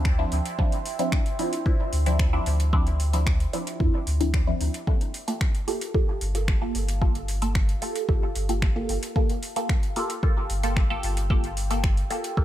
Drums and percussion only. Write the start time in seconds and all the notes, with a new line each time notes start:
0.05 finger snap, kick
0.32 open hi-hat
0.46 closed hi-hat
0.59 kick
0.72 closed hi-hat
0.86 open hi-hat
0.99 closed hi-hat
1.12 finger snap, kick
1.26 closed hi-hat
1.39 open hi-hat
1.53 closed hi-hat
1.66 kick
1.93 open hi-hat
2.06 closed hi-hat
2.19 finger snap, kick
2.46 open hi-hat
2.60 closed hi-hat
2.73 kick
2.87 closed hi-hat
3.00 open hi-hat
3.13 closed hi-hat
3.27 finger snap, kick
3.40 closed hi-hat
3.53 open hi-hat
3.67 closed hi-hat
3.80 kick
4.07 open hi-hat
4.21 closed hi-hat
4.34 finger snap, kick
4.61 open hi-hat
4.74 closed hi-hat
4.87 kick
5.01 closed hi-hat
5.14 open hi-hat
5.28 closed hi-hat
5.41 finger snap, kick
5.55 closed hi-hat
5.68 open hi-hat
5.81 closed hi-hat
5.95 kick
6.21 open hi-hat
6.35 closed hi-hat
6.48 finger snap, kick
6.75 open hi-hat
6.89 closed hi-hat
7.02 kick
7.15 closed hi-hat
7.28 open hi-hat
7.42 closed hi-hat
7.55 finger snap, kick
7.69 closed hi-hat
7.82 open hi-hat
7.96 closed hi-hat
8.09 kick
8.35 open hi-hat
8.49 closed hi-hat
8.62 finger snap, kick
8.89 open hi-hat
9.03 closed hi-hat
9.16 kick
9.29 closed hi-hat
9.43 open hi-hat
9.56 closed hi-hat
9.69 finger snap, kick
9.83 closed hi-hat
9.96 open hi-hat
10.10 closed hi-hat
10.23 kick
10.50 open hi-hat
10.63 closed hi-hat
10.77 finger snap, kick
11.03 open hi-hat
11.17 closed hi-hat
11.30 kick
11.44 closed hi-hat
11.57 open hi-hat
11.71 closed hi-hat
11.84 finger snap, kick
11.97 closed hi-hat
12.11 open hi-hat
12.24 closed hi-hat
12.37 kick